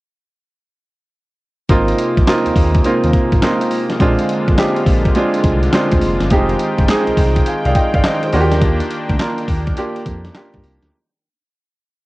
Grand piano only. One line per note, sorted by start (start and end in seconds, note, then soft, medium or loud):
1.69 2.07 A#3 loud
1.69 2.07 C4 medium
1.69 2.07 D#4 medium
1.69 2.08 F4 loud
2.27 2.65 A#3 medium
2.27 2.65 C4 medium
2.27 2.65 D#4 medium
2.27 2.65 F4 loud
2.85 3.22 A#3 medium
2.85 3.23 C4 medium
2.85 3.23 D#4 medium
2.85 3.23 F4 medium
3.43 3.80 A#3 medium
3.43 3.80 C4 medium
3.43 3.81 D#4 medium
3.43 3.81 F4 medium
4.00 4.38 G#3 medium
4.00 4.38 C4 medium
4.00 4.38 D4 medium
4.00 4.38 F4 loud
4.58 4.96 G#3 medium
4.58 4.96 C4 medium
4.58 4.96 D4 medium
4.58 4.96 G4 loud
5.16 5.53 G#3 loud
5.16 5.53 C4 medium
5.16 5.54 D4 medium
5.16 5.54 F4 loud
5.73 6.11 G#3 medium
5.73 6.11 C4 medium
5.73 6.11 D4 medium
5.73 6.12 F4 loud
6.31 6.69 G#3 medium
6.31 6.69 C4 medium
6.31 6.69 D#4 medium
6.31 6.69 G4 loud
6.89 7.26 G#3 medium
6.89 7.27 C4 medium
6.89 7.27 D#4 medium
6.89 7.27 G#4 loud
7.47 7.65 F5 medium
7.47 7.65 G#5 medium
7.66 7.76 D5 medium
7.66 7.75 F5 medium
7.76 7.94 D#5 medium
7.76 7.93 G5 medium
7.95 8.04 D5 medium
7.95 8.04 F5 medium
8.05 8.22 C5 medium
8.05 8.22 D#5 medium
8.24 8.51 G#4 medium
8.24 8.51 C5 medium
8.33 9.06 A#3 loud
8.33 9.06 D4 medium
8.33 9.06 F4 medium
8.33 8.42 F#4 medium
8.41 9.10 G4 loud
9.20 9.57 A#3 medium
9.20 9.58 D4 medium
9.20 9.58 F4 medium
9.20 9.58 A#4 medium
9.77 10.15 A#3 medium
9.77 10.15 D4 medium
9.77 10.15 F4 medium
9.77 10.16 G4 loud
10.35 10.73 A#3 medium
10.35 10.73 D4 medium
10.35 10.73 F4 medium
10.35 10.73 G4 loud